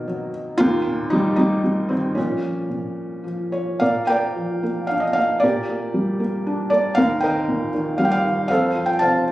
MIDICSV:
0, 0, Header, 1, 2, 480
1, 0, Start_track
1, 0, Tempo, 522648
1, 550, Time_signature, 3, 2, 24, 8
1, 2474, Tempo, 548446
1, 4874, Tempo, 512821
1, 8508, End_track
2, 0, Start_track
2, 0, Title_t, "Felt piano"
2, 0, Program_c, 0, 0
2, 0, Control_c, 0, 64, 127
2, 0, Note_on_c, 0, 47, 48
2, 0, Note_on_c, 0, 51, 62
2, 0, Note_on_c, 0, 54, 43
2, 0, Note_on_c, 0, 58, 76
2, 70, Note_off_c, 0, 54, 0
2, 70, Note_on_c, 0, 54, 50
2, 270, Note_off_c, 0, 58, 0
2, 278, Note_off_c, 0, 51, 0
2, 522, Note_off_c, 0, 47, 0
2, 529, Note_on_c, 0, 65, 115
2, 534, Note_off_c, 0, 54, 0
2, 550, Note_on_c, 0, 58, 85
2, 554, Note_on_c, 0, 39, 74
2, 563, Control_c, 0, 64, 0
2, 703, Control_c, 0, 64, 127
2, 794, Note_on_c, 0, 46, 55
2, 993, Note_off_c, 0, 58, 0
2, 1012, Note_on_c, 0, 63, 101
2, 1031, Note_off_c, 0, 65, 0
2, 1031, Note_on_c, 0, 51, 54
2, 1033, Note_on_c, 0, 55, 79
2, 1238, Note_off_c, 0, 63, 0
2, 1252, Note_off_c, 0, 55, 0
2, 1252, Note_on_c, 0, 63, 95
2, 1269, Note_on_c, 0, 55, 78
2, 1491, Note_off_c, 0, 55, 0
2, 1505, Note_on_c, 0, 55, 57
2, 1720, Note_off_c, 0, 46, 0
2, 1733, Note_on_c, 0, 60, 82
2, 1736, Note_off_c, 0, 51, 0
2, 1750, Note_on_c, 0, 51, 69
2, 1754, Note_off_c, 0, 63, 0
2, 1952, Note_off_c, 0, 39, 0
2, 1972, Note_off_c, 0, 51, 0
2, 1972, Note_off_c, 0, 55, 0
2, 1973, Note_on_c, 0, 61, 77
2, 1986, Note_on_c, 0, 46, 68
2, 1988, Note_off_c, 0, 60, 0
2, 1992, Note_on_c, 0, 53, 59
2, 1996, Control_c, 0, 64, 0
2, 2157, Control_c, 0, 64, 127
2, 2210, Note_off_c, 0, 53, 0
2, 2223, Note_on_c, 0, 53, 41
2, 2458, Note_off_c, 0, 46, 0
2, 2472, Note_on_c, 0, 46, 41
2, 2939, Note_off_c, 0, 53, 0
2, 2952, Note_on_c, 0, 53, 43
2, 3171, Note_off_c, 0, 61, 0
2, 3199, Note_on_c, 0, 73, 67
2, 3426, Note_off_c, 0, 46, 0
2, 3436, Note_off_c, 0, 53, 0
2, 3439, Note_on_c, 0, 77, 86
2, 3451, Note_on_c, 0, 46, 50
2, 3455, Note_on_c, 0, 70, 57
2, 3457, Note_off_c, 0, 73, 0
2, 3458, Note_on_c, 0, 74, 57
2, 3465, Control_c, 0, 64, 0
2, 3644, Control_c, 0, 64, 127
2, 3680, Note_on_c, 0, 79, 92
2, 3688, Note_off_c, 0, 74, 0
2, 3690, Note_off_c, 0, 70, 0
2, 3695, Note_off_c, 0, 77, 0
2, 3697, Note_on_c, 0, 58, 43
2, 3701, Note_on_c, 0, 74, 56
2, 3703, Note_on_c, 0, 70, 60
2, 3930, Note_on_c, 0, 53, 43
2, 4157, Note_off_c, 0, 58, 0
2, 4170, Note_on_c, 0, 58, 47
2, 4378, Note_off_c, 0, 74, 0
2, 4379, Note_off_c, 0, 70, 0
2, 4379, Note_on_c, 0, 77, 74
2, 4417, Note_on_c, 0, 62, 44
2, 4424, Note_off_c, 0, 79, 0
2, 4494, Note_on_c, 0, 75, 72
2, 4505, Note_off_c, 0, 77, 0
2, 4608, Note_on_c, 0, 77, 85
2, 4634, Note_off_c, 0, 58, 0
2, 4634, Note_off_c, 0, 75, 0
2, 4647, Note_on_c, 0, 58, 45
2, 4838, Note_off_c, 0, 46, 0
2, 4840, Note_on_c, 0, 74, 88
2, 4846, Note_off_c, 0, 53, 0
2, 4863, Note_off_c, 0, 77, 0
2, 4865, Note_off_c, 0, 62, 0
2, 4868, Note_off_c, 0, 58, 0
2, 4869, Note_on_c, 0, 46, 61
2, 4876, Note_on_c, 0, 67, 62
2, 4876, Note_on_c, 0, 70, 66
2, 4889, Control_c, 0, 64, 0
2, 5035, Control_c, 0, 64, 127
2, 5113, Note_on_c, 0, 58, 50
2, 5346, Note_on_c, 0, 55, 45
2, 5573, Note_off_c, 0, 58, 0
2, 5587, Note_on_c, 0, 58, 55
2, 5838, Note_on_c, 0, 62, 57
2, 6042, Note_off_c, 0, 74, 0
2, 6043, Note_off_c, 0, 67, 0
2, 6043, Note_off_c, 0, 70, 0
2, 6056, Note_on_c, 0, 74, 83
2, 6062, Note_off_c, 0, 58, 0
2, 6076, Note_on_c, 0, 58, 53
2, 6277, Note_off_c, 0, 46, 0
2, 6284, Note_off_c, 0, 55, 0
2, 6288, Note_on_c, 0, 77, 99
2, 6303, Note_off_c, 0, 62, 0
2, 6308, Note_off_c, 0, 58, 0
2, 6313, Note_off_c, 0, 74, 0
2, 6313, Note_on_c, 0, 39, 65
2, 6320, Note_on_c, 0, 70, 76
2, 6330, Control_c, 0, 64, 0
2, 6516, Control_c, 0, 64, 127
2, 6530, Note_on_c, 0, 79, 90
2, 6545, Note_off_c, 0, 70, 0
2, 6546, Note_off_c, 0, 77, 0
2, 6557, Note_on_c, 0, 51, 54
2, 6559, Note_on_c, 0, 70, 69
2, 6559, Note_on_c, 0, 75, 65
2, 6787, Note_on_c, 0, 46, 51
2, 6983, Note_off_c, 0, 79, 0
2, 7020, Note_off_c, 0, 51, 0
2, 7034, Note_on_c, 0, 51, 58
2, 7232, Note_off_c, 0, 70, 0
2, 7232, Note_off_c, 0, 75, 0
2, 7253, Note_on_c, 0, 77, 85
2, 7263, Note_on_c, 0, 55, 54
2, 7317, Note_off_c, 0, 77, 0
2, 7319, Note_on_c, 0, 79, 72
2, 7382, Note_on_c, 0, 77, 96
2, 7385, Note_off_c, 0, 79, 0
2, 7491, Note_off_c, 0, 51, 0
2, 7506, Note_on_c, 0, 51, 45
2, 7699, Note_off_c, 0, 39, 0
2, 7709, Note_off_c, 0, 46, 0
2, 7709, Note_off_c, 0, 77, 0
2, 7723, Note_off_c, 0, 55, 0
2, 7723, Note_on_c, 0, 77, 93
2, 7733, Note_off_c, 0, 51, 0
2, 7733, Note_on_c, 0, 41, 61
2, 7746, Note_on_c, 0, 72, 61
2, 7748, Note_on_c, 0, 69, 71
2, 7751, Control_c, 0, 64, 0
2, 7910, Control_c, 0, 64, 127
2, 7974, Note_on_c, 0, 53, 49
2, 8078, Note_on_c, 0, 79, 77
2, 8102, Note_off_c, 0, 77, 0
2, 8201, Note_on_c, 0, 81, 88
2, 8211, Note_off_c, 0, 72, 0
2, 8216, Note_off_c, 0, 79, 0
2, 8225, Note_on_c, 0, 72, 67
2, 8227, Note_on_c, 0, 77, 66
2, 8228, Note_on_c, 0, 48, 40
2, 8440, Note_off_c, 0, 69, 0
2, 8466, Note_off_c, 0, 53, 0
2, 8508, Note_off_c, 0, 41, 0
2, 8508, Note_off_c, 0, 48, 0
2, 8508, Note_off_c, 0, 72, 0
2, 8508, Note_off_c, 0, 77, 0
2, 8508, Note_off_c, 0, 81, 0
2, 8508, End_track
0, 0, End_of_file